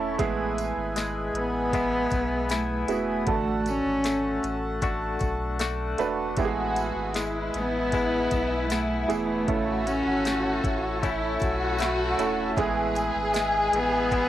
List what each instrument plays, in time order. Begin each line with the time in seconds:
Already playing: sub bass E1, grand piano A3 C#4 E4 A4, clean electric guitar A3 C#4 E4, harmonium E4 A4 C#5 A5
0.18 sub bass A1, grand piano G#3 A3 B3 E4 G#4, harmonium G#4 B4 G#5, kick, closed hi-hat, tambourine
0.58 closed hi-hat, tambourine
0.77 sub bass G#1
0.96 clean electric guitar G#3, snare, closed hi-hat, tambourine
1.33 sub bass A1, cello B3, closed hi-hat
1.73 clean electric guitar G#3 B3 E4, kick, closed hi-hat, tambourine
2.10 sub bass B1, kick, closed hi-hat, tambourine
2.49 cello A3, clean electric guitar B3 E4, snare, closed hi-hat, tambourine
2.88 sub bass E1, grand piano B3 E4 F#4 G#4, closed hi-hat, tambourine
2.92 cello A3
3.27 sub bass A1, grand piano D3 A3 F#4 A4, harmonium F#4 A4 F#5 A5, kick, closed hi-hat
3.66 cello C#4, closed hi-hat, tambourine
3.85 sub bass G#1
4.04 clean electric guitar A3, snare, closed hi-hat, tambourine
4.43 sub bass A1, closed hi-hat, tambourine
4.82 clean electric guitar A3 D4 F#4, kick, closed hi-hat, tambourine
5.19 sub bass B1, kick, closed hi-hat, tambourine
5.59 clean electric guitar A3 D4 F#4, snare, closed hi-hat, tambourine
5.98 sub bass E1, grand piano A3 D4 F#4 B4, closed hi-hat, tambourine
6.37 sub bass A1, grand piano G#3 A3 B3 E4 G4, harmonium E4 G#4 B4 G#5, violin section F#4, kick, closed hi-hat, tambourine
6.45 grand piano G#4
6.76 closed hi-hat, tambourine
6.95 sub bass G#1
7.14 clean electric guitar G#3, violin section E4, snare, closed hi-hat, tambourine
7.54 sub bass A1, cello B3, closed hi-hat, tambourine
7.92 clean electric guitar G#3 B3 E4, kick, closed hi-hat, tambourine
8.31 sub bass B1, kick, closed hi-hat, tambourine
8.70 cello A3, clean electric guitar B3 E4, snare, closed hi-hat, tambourine
9.08 sub bass E1, grand piano E3 B3 E4 G#4, cello A3, closed hi-hat, tambourine
9.48 sub bass A1, grand piano C#3 E3 A3 C#4 E4 A4, violin section F#4, harmonium A4 C#5 A5, kick, closed hi-hat
9.85 cello C#4, closed hi-hat, tambourine
10.05 sub bass G#1
10.25 clean electric guitar A3, snare, closed hi-hat, tambourine
10.63 sub bass A1, kick, closed hi-hat, tambourine
11.03 clean electric guitar A3 C#4 E4, violin section E4, kick, closed hi-hat, tambourine
11.40 sub bass B1, violin section F#4, kick, closed hi-hat, tambourine
11.78 clean electric guitar A3 C#4 E4, snare, closed hi-hat, tambourine
12.18 sub bass E1, grand piano A3 C#4 E4 A4, closed hi-hat, tambourine
12.56 sub bass A1, grand piano G#3 A3 B3 E4 G#4, violin section G#4, harmonium G#4 B4 G#5, kick, closed hi-hat, tambourine
12.95 closed hi-hat, tambourine
13.15 sub bass G#1
13.34 clean electric guitar G#3, snare, closed hi-hat, tambourine
13.72 sub bass A1, cello B3, closed hi-hat
14.11 clean electric guitar G#3 B3 E4, kick, closed hi-hat, tambourine